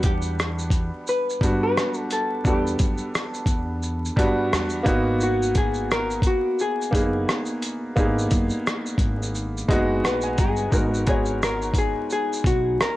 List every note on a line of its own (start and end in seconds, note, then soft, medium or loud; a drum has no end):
0.00 0.88 E2 loud
0.00 0.89 G3 medium
0.00 0.90 B3 medium
0.00 0.90 D4 medium
0.00 0.91 F#5 medium
0.00 kick medium
0.00 closed hi-hat medium
0.00 shaker soft
0.06 1.09 G4 medium
0.22 shaker soft
0.39 cross-stick loud
0.39 shaker medium
0.59 shaker soft
0.70 kick medium
0.70 closed hi-hat medium
0.70 shaker soft
1.07 1.62 B4 loud
1.07 shaker medium
1.30 shaker soft
1.41 1.72 G2 medium
1.41 2.33 G3 medium
1.41 2.33 B3 medium
1.41 2.34 D4 medium
1.41 2.34 F#4 medium
1.41 kick medium
1.41 closed hi-hat medium
1.41 shaker soft
1.63 2.08 B4 loud
1.78 cross-stick loud
1.78 shaker medium
1.94 shaker soft
2.11 2.44 A4 medium
2.11 closed hi-hat medium
2.11 shaker soft
2.44 2.76 E2 loud
2.44 3.66 G3 medium
2.44 3.66 B3 medium
2.44 3.67 D4 medium
2.44 3.33 G4 medium
2.44 3.67 A4 medium
2.44 kick loud
2.44 shaker medium
2.67 shaker soft
2.79 2.97 F#2 medium
2.79 kick medium
2.79 closed hi-hat medium
2.79 shaker soft
2.98 shaker soft
3.15 cross-stick loud
3.15 shaker medium
3.33 3.80 F#4 medium
3.33 shaker soft
3.46 4.08 E2 medium
3.46 kick medium
3.46 closed hi-hat medium
3.46 shaker soft
3.83 shaker medium
4.05 shaker soft
4.16 4.48 G2 medium
4.16 4.86 G3 loud
4.16 4.83 B3 medium
4.16 4.87 D4 medium
4.16 4.85 F#4 loud
4.16 kick medium
4.16 closed hi-hat medium
4.16 shaker soft
4.53 4.83 E2 medium
4.53 cross-stick loud
4.53 shaker medium
4.69 shaker soft
4.83 6.26 G#1 loud
4.83 6.06 A#3 medium
4.83 6.07 B3 loud
4.83 6.07 D#4 medium
4.83 6.07 F#4 loud
4.83 kick loud
4.83 closed hi-hat medium
4.83 shaker soft
5.21 5.57 F#4 medium
5.21 shaker medium
5.42 shaker soft
5.55 5.92 G#4 loud
5.55 kick medium
5.55 closed hi-hat medium
5.55 shaker soft
5.74 shaker soft
5.91 6.26 A#4 loud
5.91 cross-stick loud
5.91 shaker medium
6.10 shaker soft
6.22 kick medium
6.22 closed hi-hat medium
6.22 shaker medium
6.27 6.61 F#4 medium
6.59 10.01 G#4 loud
6.59 shaker medium
6.82 shaker soft
6.91 7.24 F#1 medium
6.91 7.83 A#3 medium
6.91 7.84 B3 medium
6.91 7.84 D#4 medium
6.91 7.85 G#4 medium
6.91 kick loud
6.91 closed hi-hat medium
6.91 shaker soft
7.29 cross-stick loud
7.29 shaker medium
7.45 shaker soft
7.62 closed hi-hat medium
7.62 shaker soft
7.96 8.27 G#1 loud
7.96 9.17 A#3 medium
7.96 9.18 B3 medium
7.96 9.18 D#4 medium
7.96 9.19 G#4 medium
7.96 kick loud
7.96 shaker medium
8.19 shaker soft
8.31 8.49 F#1 medium
8.31 kick medium
8.31 closed hi-hat medium
8.31 shaker soft
8.50 shaker soft
8.67 cross-stick loud
8.67 shaker medium
8.86 shaker soft
8.98 9.60 G#1 loud
8.98 kick medium
8.98 closed hi-hat medium
8.98 shaker soft
9.22 shaker medium
9.35 shaker medium
9.57 shaker soft
9.68 10.00 F#1 medium
9.68 10.60 G#3 medium
9.68 10.60 B3 medium
9.68 10.61 D#4 medium
9.68 10.61 F#4 loud
9.68 10.01 D#5 medium
9.68 kick loud
9.68 closed hi-hat medium
9.68 shaker soft
10.04 10.35 A#1 medium
10.04 10.40 B4 loud
10.04 10.22 F#5 medium
10.04 cross-stick loud
10.04 shaker medium
10.21 10.37 G#5 medium
10.21 shaker soft
10.38 10.69 G1 medium
10.38 11.07 G#4 loud
10.38 10.70 A#5 medium
10.38 kick loud
10.38 closed hi-hat medium
10.38 shaker soft
10.57 shaker soft
10.71 11.92 G#1 loud
10.71 11.02 G#2 medium
10.71 11.02 B3 medium
10.71 11.03 D#4 medium
10.71 11.03 F#4 medium
10.71 11.03 A#4 medium
10.71 kick loud
10.71 shaker medium
10.94 shaker soft
11.06 12.28 G#2 medium
11.06 12.28 B3 medium
11.06 12.28 D#4 medium
11.06 12.29 F#4 medium
11.06 11.43 G#4 medium
11.06 12.29 C#5 medium
11.06 kick medium
11.06 closed hi-hat medium
11.06 shaker soft
11.25 shaker soft
11.43 11.78 A#4 loud
11.43 cross-stick loud
11.43 shaker medium
11.62 shaker soft
11.74 kick medium
11.74 closed hi-hat medium
11.74 shaker soft
11.78 12.11 G#4 medium
12.10 12.47 G#4 loud
12.10 shaker medium
12.33 shaker soft
12.44 12.75 B1 medium
12.44 12.78 F#4 medium
12.44 kick medium
12.44 closed hi-hat medium
12.44 shaker soft
12.81 12.97 A#4 loud
12.81 cross-stick loud
12.81 shaker medium